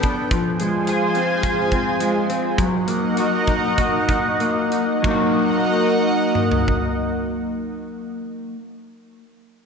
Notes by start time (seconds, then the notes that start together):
Already playing: B3 D4 A4 B4 G5
0.03 D4, kick, closed hi-hat
0.31 F3 F4 G#4 C5 G#5, kick, closed hi-hat
0.60 G#3, closed hi-hat
0.87 G#4, closed hi-hat
1.15 C4, closed hi-hat
1.43 G#4, kick, closed hi-hat
1.72 C4, kick, closed hi-hat
2.00 G#3, closed hi-hat
2.29 C4, closed hi-hat
2.58 F#3 D#4 A#4 D#5 F#5, kick, closed hi-hat
2.88 A#3, closed hi-hat
3.17 F#4, closed hi-hat
3.47 D#4, kick, closed hi-hat
3.78 F#4, kick, closed hi-hat
4.09 D#4, kick, closed hi-hat
4.40 A#3, closed hi-hat
4.72 D#4, closed hi-hat
5.02 F#3 A#3 D#4 F#4 A#4 D#5 F#5, kick, ride
5.08 D#4 F#4
6.35 mid tom
6.51 floor tom
6.68 kick